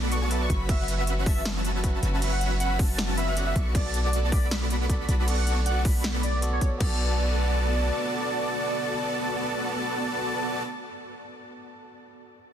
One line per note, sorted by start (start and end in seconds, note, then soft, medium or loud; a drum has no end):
0.00 0.48 B1 medium
0.00 0.47 D3 medium
0.00 0.47 A3 medium
0.00 0.52 B3 medium
0.00 6.77 B3 medium
0.00 0.30 F#4 medium
0.00 6.77 F#4 medium
0.00 0.52 A4 medium
0.00 0.52 D5 medium
0.12 0.19 B3 loud
0.12 0.19 F#4 medium
0.12 0.19 A4 medium
0.12 0.19 D5 medium
0.12 0.19 C#6 loud
0.12 0.28 C#6 loud
0.12 closed hi-hat medium
0.22 0.48 B3 medium
0.22 0.48 F#4 medium
0.22 0.48 A4 medium
0.22 0.48 D5 medium
0.22 0.48 A5 medium
0.30 0.66 F#3 medium
0.30 0.67 F#4 medium
0.30 0.67 B4 medium
0.30 0.67 E5 loud
0.30 closed hi-hat medium
0.41 0.57 C#6 loud
0.50 2.01 F#1 medium
0.50 3.53 E3 medium
0.50 3.53 C#4 medium
0.50 0.67 C#4 loud
0.50 0.67 F#4 medium
0.50 0.67 B4 medium
0.50 0.67 E5 medium
0.50 0.67 B5 loud
0.50 kick medium
0.50 closed hi-hat medium
0.67 1.81 F#3 medium
0.67 1.24 C#4 medium
0.67 1.81 F#4 medium
0.67 1.24 F#4 medium
0.67 1.24 B4 medium
0.67 1.82 B4 medium
0.67 0.85 E5 loud
0.67 1.24 E5 medium
0.67 1.83 E5 medium
0.67 1.24 F#5 medium
0.67 kick loud
0.67 closed hi-hat medium
0.67 crash soft
0.88 closed hi-hat medium
0.98 1.14 E5 loud
1.07 closed hi-hat medium
1.26 2.20 C#4 medium
1.26 2.20 F#4 medium
1.26 2.20 B4 medium
1.26 1.43 E5 loud
1.26 2.20 E5 medium
1.26 2.20 A5 loud
1.26 kick loud
1.26 open hi-hat medium
1.45 snare loud
1.45 closed hi-hat medium
1.45 crash soft
1.65 closed hi-hat medium
1.83 2.19 F#3 medium
1.83 2.20 F#4 medium
1.83 2.20 B4 medium
1.83 2.20 E5 medium
1.83 kick medium
1.83 closed hi-hat medium
2.03 3.54 F#1 medium
2.03 closed hi-hat medium
2.20 3.33 F#3 medium
2.20 2.77 C#4 medium
2.20 3.34 F#4 medium
2.20 2.77 F#4 medium
2.20 2.77 B4 medium
2.20 3.35 B4 medium
2.20 2.77 E5 medium
2.20 3.35 E5 medium
2.20 2.77 B5 loud
2.20 closed hi-hat medium
2.20 crash medium
2.32 2.48 F#5 medium
2.41 closed hi-hat medium
2.60 2.76 F#5 loud
2.60 closed hi-hat medium
2.79 3.16 C#4 loud
2.79 3.16 F#4 medium
2.79 3.16 B4 medium
2.79 3.16 E5 medium
2.79 3.16 A5 loud
2.79 kick loud
2.79 open hi-hat medium
2.98 snare loud
2.98 closed hi-hat medium
2.98 crash soft
3.17 3.25 C#4 loud
3.17 3.25 F#4 medium
3.17 3.25 B4 medium
3.17 3.25 E5 medium
3.17 3.34 E5 loud
3.17 3.25 B5 loud
3.17 closed hi-hat medium
3.27 3.54 C#4 medium
3.27 3.54 F#4 medium
3.27 3.54 B4 medium
3.27 3.54 E5 medium
3.27 3.54 F#5 medium
3.27 3.54 F#5 loud
3.36 3.72 B3 medium
3.36 3.72 F#4 medium
3.36 3.73 A4 medium
3.36 3.73 D5 medium
3.36 closed hi-hat medium
3.47 3.63 E5 loud
3.56 5.07 B1 medium
3.56 6.77 D3 medium
3.56 6.77 A3 medium
3.56 3.73 B3 medium
3.56 3.73 F#4 medium
3.56 3.73 A4 medium
3.56 3.73 D5 medium
3.56 3.73 C#6 loud
3.56 kick medium
3.56 closed hi-hat medium
3.73 4.86 B3 medium
3.73 4.30 B3 medium
3.73 4.87 F#4 medium
3.73 4.30 F#4 medium
3.73 4.30 A4 medium
3.73 4.88 A4 medium
3.73 4.30 D5 medium
3.73 3.91 D5 loud
3.73 4.30 A5 loud
3.73 4.30 A5 medium
3.73 kick loud
3.73 closed hi-hat medium
3.73 crash medium
3.77 4.88 D5 medium
3.94 closed hi-hat medium
4.04 4.20 D5 loud
4.13 closed hi-hat medium
4.32 5.26 B3 medium
4.32 5.26 F#4 medium
4.32 5.26 A4 medium
4.32 4.48 D5 loud
4.32 5.26 D5 medium
4.32 5.25 B5 loud
4.32 5.26 B5 loud
4.32 kick loud
4.32 open hi-hat loud
4.51 snare loud
4.51 closed hi-hat medium
4.51 crash soft
4.70 closed hi-hat medium
4.89 5.25 B3 medium
4.89 5.25 F#4 medium
4.89 5.26 A4 medium
4.89 5.26 D5 medium
4.89 kick medium
4.89 closed hi-hat medium
5.09 6.60 B1 medium
5.09 closed hi-hat medium
5.26 6.39 B3 medium
5.26 5.83 B3 medium
5.26 6.40 F#4 medium
5.26 5.83 F#4 medium
5.26 5.83 A4 medium
5.26 6.41 A4 medium
5.26 5.83 D5 medium
5.26 5.83 C#6 loud
5.26 closed hi-hat medium
5.26 crash medium
5.30 6.41 D5 medium
5.38 5.54 F#5 loud
5.47 closed hi-hat medium
5.66 5.82 F#5 loud
5.66 closed hi-hat medium
5.85 6.21 B3 medium
5.85 6.21 F#4 medium
5.85 6.21 A4 medium
5.85 6.21 D5 medium
5.85 6.21 B5 loud
5.85 kick loud
5.85 open hi-hat loud
6.04 snare loud
6.04 closed hi-hat medium
6.04 crash soft
6.23 6.39 D5 loud
6.23 closed hi-hat medium
6.41 6.76 B3 medium
6.41 6.78 F#4 medium
6.41 6.79 A4 medium
6.41 6.79 D5 loud
6.41 closed hi-hat medium
6.52 6.68 C#5 loud
6.61 kick medium
6.61 closed hi-hat medium
6.78 7.91 B1 loud
6.78 10.62 D3 medium
6.78 10.62 A3 medium
6.78 10.88 B3 medium
6.78 10.62 B3 medium
6.78 10.90 F#4 medium
6.78 10.62 F#4 medium
6.78 10.62 A4 medium
6.78 10.62 D5 medium
6.78 10.62 A5 loud
6.78 kick loud
6.78 crash medium
6.82 10.92 A4 medium
6.82 10.94 D5 loud